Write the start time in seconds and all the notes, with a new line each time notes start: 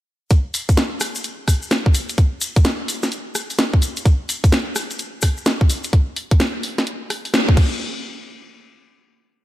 0.31 kick, closed hi-hat, maracas
0.54 open hi-hat, maracas
0.69 kick, closed hi-hat, maracas
0.77 snare, closed hi-hat, maracas
1.00 cross-stick, open hi-hat, maracas
1.15 closed hi-hat, maracas
1.24 closed hi-hat, maracas
1.48 kick, cross-stick, open hi-hat, maracas
1.62 maracas
1.71 snare, closed hi-hat, maracas
1.86 kick
1.94 open hi-hat, maracas
2.09 closed hi-hat, maracas
2.18 kick, closed hi-hat, maracas
2.41 open hi-hat, maracas
2.56 kick, closed hi-hat, maracas
2.65 snare, closed hi-hat, maracas
2.88 open hi-hat, maracas
3.03 snare, closed hi-hat, maracas
3.12 closed hi-hat, maracas
3.35 cross-stick, open hi-hat, maracas
3.50 open hi-hat, maracas
3.58 snare, closed hi-hat, maracas
3.74 kick
3.82 open hi-hat, maracas
3.97 closed hi-hat, maracas
4.05 kick, closed hi-hat, maracas
4.29 open hi-hat, maracas
4.44 kick, closed hi-hat, maracas
4.52 snare, closed hi-hat, maracas
4.75 cross-stick, open hi-hat, maracas
4.91 closed hi-hat, maracas
4.99 closed hi-hat, maracas
5.22 kick, cross-stick, open hi-hat, maracas
5.37 maracas
5.46 snare, closed hi-hat, maracas
5.61 kick
5.70 open hi-hat, maracas
5.84 closed hi-hat, maracas
5.93 kick, closed hi-hat
6.16 open hi-hat
6.31 kick, closed hi-hat
6.40 snare, closed hi-hat
6.63 open hi-hat
6.78 snare, closed hi-hat
6.87 closed hi-hat
7.10 cross-stick, open hi-hat
7.25 open hi-hat
7.34 snare, closed hi-hat
7.49 kick
7.57 kick, crash